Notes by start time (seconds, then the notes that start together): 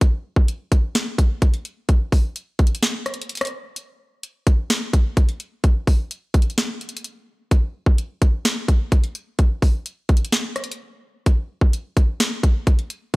0.01 kick, closed hi-hat
0.36 kick
0.48 closed hi-hat
0.72 kick, closed hi-hat
0.95 snare, closed hi-hat
1.18 kick, closed hi-hat
1.42 kick, closed hi-hat
1.54 closed hi-hat
1.65 closed hi-hat
1.89 kick, closed hi-hat
2.12 kick, open hi-hat
2.36 closed hi-hat
2.59 kick, closed hi-hat
2.67 closed hi-hat
2.75 closed hi-hat
2.83 snare, closed hi-hat
3.06 cross-stick, closed hi-hat
3.14 closed hi-hat
3.22 closed hi-hat
3.29 closed hi-hat
3.35 closed hi-hat
3.37 cross-stick, closed hi-hat
3.41 closed hi-hat
3.45 closed hi-hat
3.47 closed hi-hat
3.76 closed hi-hat
4.23 closed hi-hat
4.47 kick, closed hi-hat
4.70 snare, closed hi-hat
4.93 kick, closed hi-hat
5.17 kick, closed hi-hat
5.29 closed hi-hat
5.40 closed hi-hat
5.64 kick, closed hi-hat
5.87 kick, open hi-hat
6.11 closed hi-hat
6.34 kick, closed hi-hat
6.42 closed hi-hat
6.50 closed hi-hat
6.58 snare, closed hi-hat
6.81 closed hi-hat
6.89 closed hi-hat
6.97 closed hi-hat
7.04 closed hi-hat
7.51 kick, closed hi-hat
7.86 kick
7.98 closed hi-hat
8.22 kick, closed hi-hat
8.45 snare, closed hi-hat
8.68 kick, closed hi-hat
8.92 kick, closed hi-hat
9.04 closed hi-hat
9.15 closed hi-hat
9.39 kick, closed hi-hat
9.62 kick, open hi-hat
9.86 closed hi-hat
10.09 kick, closed hi-hat
10.17 closed hi-hat
10.25 closed hi-hat
10.32 snare, closed hi-hat
10.56 cross-stick, closed hi-hat
10.64 closed hi-hat
10.72 closed hi-hat
11.26 kick, closed hi-hat
11.61 kick
11.73 closed hi-hat
11.97 kick, closed hi-hat
12.20 snare, closed hi-hat
12.43 kick, closed hi-hat
12.67 kick, closed hi-hat
12.79 closed hi-hat
12.90 closed hi-hat